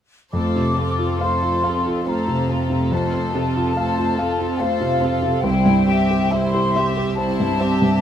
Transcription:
0.32 grand piano F2, cello section F2, viola section A3 F4, violin section A4 C5, flute section D6
0.56 grand piano C3
0.77 grand piano C4, viola section C4 A4, violin section F4 A4
0.99 grand piano F4
1.21 viola section A3 F4, violin section A4 C5, grand piano F5, flute section C6
1.43 grand piano F4
1.64 viola section C4 A4, violin section F4 A4, grand piano F5
1.86 grand piano F4
2.06 viola section A3 F4, grand piano C4, violin section A4 C5, flute section A#5
2.28 grand piano C3
2.49 viola section A3 C4, grand piano C4, violin section F4 A4
2.70 grand piano C3
2.91 grand piano F2, viola section A3 F4, violin section A4 C5, flute section A5
3.13 grand piano C4
3.34 grand piano C3, viola section C4 A4, violin section F4 A4
3.57 grand piano F4
3.77 viola section A3 F4, violin section A4 C5, grand piano F5
3.98 grand piano F4
4.18 viola section C4 A4, violin section F4 A4, grand piano F5
4.39 grand piano F4
4.60 viola section A3 F4, grand piano C4, violin section A4 C5, flute section F5
4.81 grand piano C3
5.01 grand piano C4, viola section C4 A4, violin section F4 A4
5.23 grand piano C3
5.43 grand piano C2, cello section C2, viola section G3 E4, violin section E4 C5, flute section G5
5.66 grand piano G2
5.89 grand piano C4, viola section C4 G4, violin section G4 E5
6.11 grand piano G4
6.31 viola section G3 E4, violin section E4 C5, grand piano E5, flute section C6
6.54 grand piano G4
6.75 viola section C4 G4, violin section G4 E5, grand piano E5
6.97 grand piano G4
7.16 viola section G3 E4, grand piano C4, violin section E4 C5, flute section A5
7.40 grand piano G2
7.59 viola section C4 G4, grand piano C4, violin section G4 E5
7.82 grand piano G2

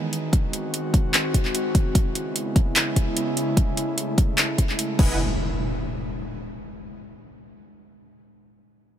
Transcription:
Already playing: analog synth pad D#3 G#3 B3
0.13 analog synth pad C4 F#4, closed hi-hat
0.33 kick, closed hi-hat
0.53 closed hi-hat
0.74 closed hi-hat
0.94 kick, closed hi-hat
1.14 clap, closed hi-hat
1.34 kick, closed hi-hat
1.45 clap
1.55 closed hi-hat
1.75 kick, closed hi-hat
1.95 analog synth pad C#3 G#3 B3 E4, kick, closed hi-hat
2.15 closed hi-hat
2.36 closed hi-hat
2.56 kick, closed hi-hat
2.76 clap, closed hi-hat
2.96 kick, closed hi-hat
3.17 closed hi-hat
3.37 analog synth pad A3, closed hi-hat
3.57 kick, closed hi-hat
3.77 closed hi-hat
3.98 closed hi-hat
4.18 kick, closed hi-hat
4.38 clap, closed hi-hat
4.58 kick, closed hi-hat
4.69 clap
4.79 closed hi-hat
4.99 sub bass E1, supersaw synth E4 B4 D#5 F#5 G#5, kick, crash, impact

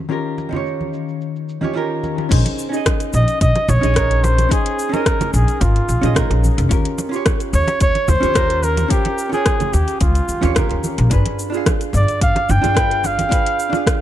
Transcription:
0.09 hollow-body jazz guitar D#3 C#4 F4 G4 A#4, shaker
0.38 muted conga, shaker
0.49 hollow-body jazz guitar D#3 C#4 F4, low conga
0.53 hollow-body jazz guitar G4 C#5, shaker
0.66 shaker
0.81 high conga, shaker
0.94 shaker
1.08 shaker
1.21 shaker
1.36 shaker
1.49 shaker
1.61 hollow-body jazz guitar D#3 C#4 F4 G4 C#5, high conga, shaker
1.74 hollow-body jazz guitar D#3 C#4 F4 G4 A#4, shaker
2.04 muted conga, high conga, shaker
2.18 muted conga, shaker
2.29 upright bass A#1, hollow-body jazz guitar C#4 D#4 G#4 C5, kick, closed hi-hat, crash, shaker
2.45 closed hi-hat, muted conga
2.59 shaker
2.69 hollow-body jazz guitar C#4 D#4
2.73 hollow-body jazz guitar G#4 D#5, shaker
2.86 kick, cross-stick, closed hi-hat, muted conga, shaker
3.00 closed hi-hat, shaker
3.13 upright bass A#1, flugelhorn D#5, muted conga, shaker
3.28 closed hi-hat, shaker
3.41 upright bass A#1, flugelhorn D#5, kick, closed hi-hat, shaker
3.55 closed hi-hat, muted conga
3.68 upright bass A#1, flugelhorn C#5, low conga, shaker
3.81 upright bass A#1, hollow-body jazz guitar C#4 D#4 G#4 D#5, closed hi-hat, muted conga, shaker
3.94 hollow-body jazz guitar C#4 D#4 G#4 A#4, kick, cross-stick, closed hi-hat, shaker
4.11 closed hi-hat
4.24 flugelhorn C5, muted conga, shaker
4.38 closed hi-hat, high conga, shaker
4.49 hollow-body jazz guitar C#4 D#4 G#4 C5, flugelhorn G#4, kick, closed hi-hat, muted conga, shaker
4.66 closed hi-hat
4.79 shaker
4.89 hollow-body jazz guitar C#4 D#4
4.93 hollow-body jazz guitar G#4 D#5, flugelhorn A#4, muted conga, shaker
5.06 kick, cross-stick, closed hi-hat, shaker
5.20 closed hi-hat, muted conga, high conga, low conga, shaker
5.34 upright bass A#1, flugelhorn G#4, shaker
5.48 closed hi-hat, shaker
5.61 upright bass G#1, flugelhorn F4, kick, closed hi-hat, muted conga, shaker
5.76 closed hi-hat
5.89 upright bass A#1, muted conga, shaker
6.01 upright bass A#1, hollow-body jazz guitar C#4 D#4 G#4 D#5, closed hi-hat, high conga, shaker
6.15 hollow-body jazz guitar C#4 D#4 G#4 A#4, kick, cross-stick, closed hi-hat, low conga, shaker
6.30 upright bass A#1, closed hi-hat, muted conga
6.44 high conga, shaker
6.58 upright bass F1, closed hi-hat, muted conga, shaker
6.69 upright bass D#2, hollow-body jazz guitar C#4 F4 G4 A#4, kick, closed hi-hat, shaker
6.85 closed hi-hat
6.98 muted conga, shaker
7.09 hollow-body jazz guitar C#4 F4, shaker
7.14 hollow-body jazz guitar G4 C#5
7.26 kick, cross-stick, closed hi-hat, muted conga, shaker
7.40 closed hi-hat, shaker
7.53 upright bass D#2, flugelhorn C#5, shaker
7.68 closed hi-hat, muted conga, shaker
7.81 upright bass D#2, flugelhorn C#5, kick, closed hi-hat, shaker
7.95 closed hi-hat, muted conga
8.08 upright bass D#2, flugelhorn C5, low conga, shaker
8.20 upright bass D#2, hollow-body jazz guitar C#4 F4 G4 C#5, closed hi-hat, shaker
8.34 hollow-body jazz guitar C#4 F4 G4 A#4, kick, cross-stick, closed hi-hat, muted conga, shaker
8.50 closed hi-hat
8.63 flugelhorn A#4, muted conga, shaker
8.77 closed hi-hat, high conga, shaker
8.88 hollow-body jazz guitar C#4 F4 G4 A#4, flugelhorn G4, kick, closed hi-hat, shaker
9.05 closed hi-hat, muted conga
9.18 shaker
9.29 hollow-body jazz guitar C#4 F4, flugelhorn G#4, muted conga, shaker
9.34 hollow-body jazz guitar C#5 G5
9.46 kick, cross-stick, closed hi-hat, shaker
9.60 closed hi-hat, high conga, low conga, shaker
9.73 upright bass D#2, flugelhorn G4, muted conga, shaker
9.88 closed hi-hat, shaker
10.01 upright bass C#2, flugelhorn F4, kick, closed hi-hat, muted conga, shaker
10.15 closed hi-hat, shaker
10.28 upright bass D#2, shaker
10.41 upright bass D#2, hollow-body jazz guitar C#4 F4 G4 C#5, closed hi-hat, muted conga, high conga, shaker
10.55 hollow-body jazz guitar C#4 F4 G4 A#4, kick, cross-stick, closed hi-hat, low conga, shaker
10.69 upright bass D#2, closed hi-hat, muted conga
10.84 high conga, shaker
10.98 upright bass A#1, closed hi-hat, shaker
11.10 upright bass G1, hollow-body jazz guitar D4 F4 G#4 B4, kick, closed hi-hat, shaker
11.26 closed hi-hat, muted conga
11.39 shaker
11.50 hollow-body jazz guitar D4 F4, shaker
11.55 hollow-body jazz guitar G#4 F5
11.66 kick, cross-stick, closed hi-hat, muted conga, shaker
11.81 closed hi-hat, shaker
11.93 upright bass G1, flugelhorn D5, muted conga, shaker
12.08 closed hi-hat, shaker
12.21 upright bass G1, flugelhorn F5, kick, closed hi-hat, shaker
12.36 closed hi-hat, muted conga
12.49 upright bass G1, flugelhorn G5, low conga, shaker
12.62 upright bass G1, hollow-body jazz guitar D4 F4 G#4 F5, closed hi-hat, muted conga, shaker
12.74 hollow-body jazz guitar D4 F4 G#4 B4, kick, cross-stick, closed hi-hat, shaker
12.91 closed hi-hat
13.04 flugelhorn F5, muted conga, shaker
13.19 closed hi-hat, high conga, shaker
13.29 hollow-body jazz guitar D4 F4 G#4 B4, kick, closed hi-hat, muted conga, shaker
13.46 closed hi-hat
13.60 shaker
13.70 hollow-body jazz guitar D4 F4, muted conga
13.74 hollow-body jazz guitar G#4 F5, shaker
13.87 kick, cross-stick, closed hi-hat, shaker

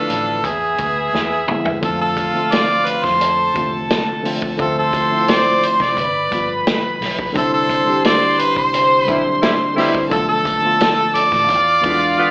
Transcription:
Already playing: tine electric piano D3 F3 A3 B3 E4 F4, violin section D4 B4 F5, harmonica A4
0.10 fingered electric bass A1, closed hi-hat
0.44 fingered electric bass E2, violin section B3 G#4 E5, harmonica G#4, kick, closed hi-hat
0.78 fingered electric bass D2, kick, closed hi-hat
1.13 fingered electric bass E2, snare
1.47 tine electric piano D3 F3 G#3 B3 E4, mid tom
1.65 fingered electric bass E2, floor tom
1.81 fingered electric bass F2, tine electric piano D3 F3 A3 C4 F4, violin section F4 F5, harmonica A4, kick, closed hi-hat
2.01 harmonica A4
2.17 kick, closed hi-hat
2.33 tine electric piano D3 F3 A3 C4 F4
2.52 harmonica D5, snare, closed hi-hat
2.86 harmonica B4, muted fingered electric bass stroke, closed hi-hat
3.04 fingered electric bass F2, harmonica C5, kick, snare
3.21 violin section A4 A5, closed hi-hat
3.53 fingered electric bass E2, tine electric piano C3 D3 A3 C4, kick, closed hi-hat
3.57 tine electric piano F4
3.90 snare, closed hi-hat
4.22 tine electric piano D3 F3 A3 C4 F4, open hi-hat
4.42 kick
4.57 fingered electric bass D2, tine electric piano D3 F3 A3 C4 F4, harmonica A4, violin section C5 C6, kick, closed hi-hat
4.79 harmonica A4
4.93 kick, closed hi-hat
5.10 tine electric piano D3 F3 A3 C4 E4
5.20 tine electric piano F4
5.28 harmonica D5, snare, closed hi-hat
5.63 harmonica C5, muted fingered electric bass stroke, closed hi-hat
5.80 fingered electric bass C2, harmonica D5, kick, snare
5.96 fingered electric bass G1, violin section B4 B5, kick, closed hi-hat
6.31 fingered electric bass G1, tine electric piano D3 F3 G3 B3 F4, kick, closed hi-hat
6.67 snare, closed hi-hat
7.01 fingered electric bass B1, snare, open hi-hat
7.19 kick
7.33 fingered electric bass C2, tine electric piano D3 G3 C4 D4, violin section C5 C6, kick, closed hi-hat
7.37 tine electric piano E4, harmonica A4
7.54 harmonica A4
7.69 kick, closed hi-hat
7.85 tine electric piano D3 G3 C4 D4 G4
8.04 harmonica D5, snare, closed hi-hat
8.39 harmonica B4, muted fingered electric bass stroke, closed hi-hat
8.56 fingered electric bass C2, harmonica C5, kick
8.74 closed hi-hat
9.03 tine electric piano D3, harmonica B4
9.07 fingered electric bass B1, horn section B2 G3 E4, tine electric piano G3 C4 D4, kick, closed hi-hat
9.42 horn section B2 G3 E4, snare, closed hi-hat
9.75 horn section B2 G3 E4, tine electric piano D3 G3 B3 C4 E4, snare, open hi-hat
9.95 kick
10.10 fingered electric bass B1, tine electric piano D3 F3 A3 B3 F4, violin section A4 A5, harmonica A4, kick, closed hi-hat
10.29 harmonica A4
10.45 kick, closed hi-hat
10.62 tine electric piano D3 F3 A3 B3 F4
10.80 snare, closed hi-hat
11.14 harmonica D5, muted fingered electric bass stroke, closed hi-hat
11.32 fingered electric bass A1, kick, snare
11.48 fingered electric bass E2, violin section F4 F5, kick, closed hi-hat
11.82 fingered electric bass E2, horn section D3 B3 F4, tine electric piano E3 G#3 B3 D4 F4, kick, closed hi-hat
12.17 horn section D3 B3 F4

